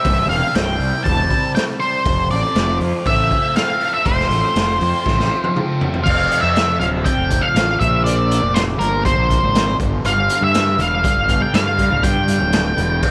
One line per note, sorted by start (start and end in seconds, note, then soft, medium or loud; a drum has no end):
0.00 0.29 C3 medium
0.00 2.01 E3 medium
0.00 0.79 G3 medium
0.00 1.03 C4 medium
0.00 2.01 C4 medium
0.00 0.55 E4 medium
0.00 2.00 G4 medium
0.00 0.26 E5 medium
0.04 0.28 C1 medium
0.04 1.30 C2 medium
0.04 2.03 D5 medium
0.04 kick loud
0.04 open hi-hat medium
0.29 0.41 E1 medium
0.29 1.04 C3 medium
0.29 0.53 F5 medium
0.29 open hi-hat soft
0.55 0.78 C1 medium
0.55 1.30 E4 medium
0.55 1.02 G5 loud
0.55 snare medium
0.55 open hi-hat medium
0.79 0.91 C2 medium
0.79 1.55 G3 medium
0.79 open hi-hat soft
1.04 1.28 E1 medium
1.04 1.80 C3 medium
1.04 1.51 A5 medium
1.04 kick medium
1.04 open hi-hat medium
1.30 2.09 E4 medium
1.30 kick medium
1.30 open hi-hat soft
1.55 2.06 G3 medium
1.55 1.62 G5 medium
1.55 snare loud
1.55 open hi-hat medium
1.80 2.06 C3 medium
1.80 2.27 C5 medium
1.80 open hi-hat soft
2.05 2.28 F1 medium
2.05 4.05 F2 medium
2.05 6.01 F3 medium
2.05 6.02 C4 medium
2.05 6.01 A4 medium
2.05 4.03 C5 medium
2.05 kick loud
2.05 open hi-hat medium
2.30 2.42 A1 medium
2.30 3.06 A3 medium
2.30 2.77 D5 medium
2.30 open hi-hat soft
2.55 2.78 F1 medium
2.55 3.30 F4 medium
2.55 snare medium
2.55 open hi-hat medium
2.80 2.92 F2 medium
2.80 3.55 C4 medium
2.80 open hi-hat soft
3.06 3.29 A1 medium
3.06 3.79 A3 medium
3.06 3.56 E5 loud
3.06 kick medium
3.06 open hi-hat medium
3.31 4.55 F4 medium
3.31 kick medium
3.31 open hi-hat soft
3.56 4.80 C4 medium
3.56 3.93 F5 medium
3.56 snare loud
3.56 open hi-hat medium
3.81 4.30 A3 medium
3.81 open hi-hat soft
3.94 4.05 E5 medium
4.05 4.29 F1 medium
4.05 5.30 F2 medium
4.05 5.52 C5 medium
4.05 6.03 F5 medium
4.05 kick loud
4.05 open hi-hat medium
4.20 snare soft
4.31 4.42 A1 medium
4.31 5.05 A3 medium
4.31 open hi-hat soft
4.55 4.79 F1 medium
4.55 5.30 F4 medium
4.55 snare medium
4.55 open hi-hat medium
4.81 4.92 F2 medium
4.81 5.54 C4 medium
4.81 open hi-hat soft
5.06 5.29 A1 medium
5.06 5.79 A3 medium
5.06 kick medium
5.06 snare soft
5.20 snare soft
5.31 6.06 F4 medium
5.44 high tom medium
5.55 6.05 C4 medium
5.55 mid tom medium
5.80 6.05 A3 medium
5.80 floor tom medium
5.94 floor tom medium
6.04 6.29 F1 medium
6.04 7.03 F2 medium
6.04 7.04 C3 medium
6.04 9.75 F3 medium
6.04 7.05 F3 medium
6.04 9.75 C4 medium
6.04 7.78 A4 medium
6.04 12.98 D5 medium
6.04 6.41 F5 medium
6.04 kick loud
6.04 crash loud
6.32 closed hi-hat medium
6.41 6.77 F2 medium
6.41 6.79 E5 medium
6.56 snare loud
6.56 closed hi-hat medium
6.80 7.03 D1 medium
6.80 6.87 F5 medium
6.80 closed hi-hat medium
7.05 7.78 F2 medium
7.05 7.79 C3 medium
7.05 7.80 F3 medium
7.05 7.44 G5 loud
7.05 kick loud
7.05 closed hi-hat medium
7.17 7.41 F1 medium
7.31 kick medium
7.31 closed hi-hat medium
7.42 7.79 F5 medium
7.55 7.78 A1 medium
7.55 snare loud
7.55 closed hi-hat medium
7.79 8.39 A#1 medium
7.79 8.78 A#2 medium
7.79 8.79 F3 medium
7.79 8.78 A#3 loud
7.79 9.77 A#4 medium
7.79 8.04 E5 medium
7.79 kick medium
7.79 closed hi-hat medium
8.04 8.56 D5 medium
8.04 closed hi-hat medium
8.31 closed hi-hat medium
8.42 8.77 F1 medium
8.54 8.61 C5 medium
8.54 snare loud
8.54 closed hi-hat medium
8.79 9.14 G1 medium
8.79 9.78 A#2 medium
8.79 9.78 F3 medium
8.79 9.78 A#3 medium
8.79 9.05 A#4 medium
8.79 closed hi-hat medium
9.05 9.76 C5 medium
9.05 kick loud
9.05 closed hi-hat medium
9.17 9.40 A#1 medium
9.30 kick medium
9.30 closed hi-hat medium
9.43 9.77 G#1 medium
9.55 snare loud
9.55 closed hi-hat medium
9.78 10.03 G1 medium
9.78 10.80 G2 loud
9.78 10.78 D3 medium
9.78 12.99 G3 medium
9.78 10.78 G3 medium
9.78 13.00 B3 medium
9.78 13.00 A4 medium
9.78 kick medium
9.78 closed hi-hat medium
10.04 10.27 G1 medium
10.04 10.43 F5 medium
10.04 closed hi-hat medium
10.16 high conga medium
10.29 closed hi-hat medium
10.41 10.76 G2 medium
10.41 10.81 E5 medium
10.41 low conga medium
10.54 snare loud
10.54 closed hi-hat medium
10.78 11.02 E1 medium
10.78 11.77 G2 medium
10.78 11.77 D3 medium
10.78 11.76 G3 medium
10.78 11.44 F5 medium
10.78 closed hi-hat medium
10.78 low conga medium
11.04 kick loud
11.04 closed hi-hat medium
11.16 11.39 G1 medium
11.29 kick medium
11.29 closed hi-hat medium
11.41 11.54 G5 medium
11.41 high conga medium
11.54 11.88 G2 medium
11.54 12.05 F5 medium
11.54 snare loud
11.54 closed hi-hat medium
11.66 high conga medium
11.78 12.76 G2 loud
11.78 12.77 D3 loud
11.78 12.76 G3 loud
11.78 kick medium
11.78 closed hi-hat medium
11.78 low conga medium
11.91 12.02 D1 medium
12.03 12.38 G2 medium
12.03 13.11 G5 medium
12.03 kick loud
12.03 closed hi-hat medium
12.15 high conga medium
12.28 closed hi-hat medium
12.28 high conga medium
12.40 12.75 D1 medium
12.40 low conga medium
12.53 snare loud
12.53 closed hi-hat medium
12.77 13.01 E1 medium
12.77 13.02 G2 medium
12.77 13.01 D3 medium
12.77 13.01 G3 medium
12.77 closed hi-hat medium
12.77 low conga medium
13.03 kick medium
13.03 crash medium